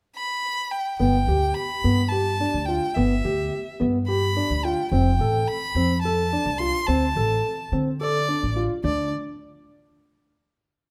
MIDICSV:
0, 0, Header, 1, 4, 480
1, 0, Start_track
1, 0, Tempo, 560748
1, 853, Time_signature, 7, 3, 24, 8
1, 9333, End_track
2, 0, Start_track
2, 0, Title_t, "Violin"
2, 0, Program_c, 0, 40
2, 132, Note_on_c, 0, 83, 87
2, 612, Note_on_c, 0, 79, 73
2, 625, Note_off_c, 0, 83, 0
2, 843, Note_off_c, 0, 79, 0
2, 848, Note_on_c, 0, 79, 77
2, 1318, Note_on_c, 0, 83, 79
2, 1331, Note_off_c, 0, 79, 0
2, 1788, Note_on_c, 0, 81, 79
2, 1801, Note_off_c, 0, 83, 0
2, 2270, Note_on_c, 0, 79, 66
2, 2283, Note_off_c, 0, 81, 0
2, 2522, Note_on_c, 0, 76, 64
2, 2535, Note_off_c, 0, 79, 0
2, 3248, Note_off_c, 0, 76, 0
2, 3491, Note_on_c, 0, 83, 80
2, 3978, Note_on_c, 0, 79, 67
2, 3991, Note_off_c, 0, 83, 0
2, 4201, Note_off_c, 0, 79, 0
2, 4206, Note_on_c, 0, 79, 71
2, 4690, Note_on_c, 0, 83, 82
2, 4703, Note_off_c, 0, 79, 0
2, 5147, Note_off_c, 0, 83, 0
2, 5152, Note_on_c, 0, 81, 78
2, 5635, Note_on_c, 0, 84, 85
2, 5648, Note_off_c, 0, 81, 0
2, 5876, Note_on_c, 0, 81, 78
2, 5889, Note_off_c, 0, 84, 0
2, 6602, Note_off_c, 0, 81, 0
2, 6855, Note_on_c, 0, 74, 90
2, 7357, Note_off_c, 0, 74, 0
2, 7571, Note_on_c, 0, 74, 65
2, 7793, Note_off_c, 0, 74, 0
2, 9333, End_track
3, 0, Start_track
3, 0, Title_t, "Grand piano"
3, 0, Program_c, 1, 0
3, 852, Note_on_c, 1, 59, 65
3, 983, Note_off_c, 1, 59, 0
3, 1098, Note_on_c, 1, 67, 62
3, 1358, Note_off_c, 1, 67, 0
3, 1576, Note_on_c, 1, 59, 59
3, 1706, Note_off_c, 1, 59, 0
3, 1813, Note_on_c, 1, 67, 62
3, 1944, Note_off_c, 1, 67, 0
3, 2057, Note_on_c, 1, 62, 60
3, 2187, Note_off_c, 1, 62, 0
3, 2297, Note_on_c, 1, 65, 58
3, 2427, Note_off_c, 1, 65, 0
3, 2535, Note_on_c, 1, 59, 65
3, 2665, Note_off_c, 1, 59, 0
3, 2778, Note_on_c, 1, 67, 58
3, 3038, Note_off_c, 1, 67, 0
3, 3251, Note_on_c, 1, 59, 60
3, 3382, Note_off_c, 1, 59, 0
3, 3495, Note_on_c, 1, 67, 62
3, 3625, Note_off_c, 1, 67, 0
3, 3735, Note_on_c, 1, 62, 63
3, 3865, Note_off_c, 1, 62, 0
3, 3978, Note_on_c, 1, 65, 62
3, 4107, Note_off_c, 1, 65, 0
3, 4214, Note_on_c, 1, 60, 68
3, 4344, Note_off_c, 1, 60, 0
3, 4456, Note_on_c, 1, 69, 63
3, 4716, Note_off_c, 1, 69, 0
3, 4932, Note_on_c, 1, 60, 63
3, 5062, Note_off_c, 1, 60, 0
3, 5178, Note_on_c, 1, 69, 67
3, 5307, Note_off_c, 1, 69, 0
3, 5416, Note_on_c, 1, 62, 64
3, 5545, Note_off_c, 1, 62, 0
3, 5650, Note_on_c, 1, 65, 61
3, 5780, Note_off_c, 1, 65, 0
3, 5889, Note_on_c, 1, 60, 71
3, 6019, Note_off_c, 1, 60, 0
3, 6132, Note_on_c, 1, 69, 61
3, 6392, Note_off_c, 1, 69, 0
3, 6616, Note_on_c, 1, 60, 58
3, 6744, Note_off_c, 1, 60, 0
3, 6854, Note_on_c, 1, 69, 65
3, 6983, Note_off_c, 1, 69, 0
3, 7092, Note_on_c, 1, 62, 63
3, 7221, Note_off_c, 1, 62, 0
3, 7330, Note_on_c, 1, 65, 60
3, 7460, Note_off_c, 1, 65, 0
3, 7566, Note_on_c, 1, 62, 59
3, 7790, Note_off_c, 1, 62, 0
3, 9333, End_track
4, 0, Start_track
4, 0, Title_t, "Upright bass"
4, 0, Program_c, 2, 32
4, 854, Note_on_c, 2, 31, 67
4, 1056, Note_off_c, 2, 31, 0
4, 1091, Note_on_c, 2, 38, 69
4, 1295, Note_off_c, 2, 38, 0
4, 1579, Note_on_c, 2, 43, 68
4, 2082, Note_off_c, 2, 43, 0
4, 2177, Note_on_c, 2, 38, 66
4, 2378, Note_off_c, 2, 38, 0
4, 2539, Note_on_c, 2, 31, 77
4, 2740, Note_off_c, 2, 31, 0
4, 2779, Note_on_c, 2, 38, 69
4, 2979, Note_off_c, 2, 38, 0
4, 3261, Note_on_c, 2, 43, 73
4, 3763, Note_off_c, 2, 43, 0
4, 3855, Note_on_c, 2, 38, 68
4, 4056, Note_off_c, 2, 38, 0
4, 4208, Note_on_c, 2, 29, 78
4, 4412, Note_off_c, 2, 29, 0
4, 4443, Note_on_c, 2, 33, 69
4, 4649, Note_off_c, 2, 33, 0
4, 4921, Note_on_c, 2, 41, 69
4, 5429, Note_off_c, 2, 41, 0
4, 5527, Note_on_c, 2, 36, 70
4, 5730, Note_off_c, 2, 36, 0
4, 5890, Note_on_c, 2, 38, 76
4, 6092, Note_off_c, 2, 38, 0
4, 6126, Note_on_c, 2, 33, 72
4, 6329, Note_off_c, 2, 33, 0
4, 6608, Note_on_c, 2, 50, 68
4, 7113, Note_off_c, 2, 50, 0
4, 7218, Note_on_c, 2, 33, 65
4, 7415, Note_off_c, 2, 33, 0
4, 7566, Note_on_c, 2, 38, 77
4, 7790, Note_off_c, 2, 38, 0
4, 9333, End_track
0, 0, End_of_file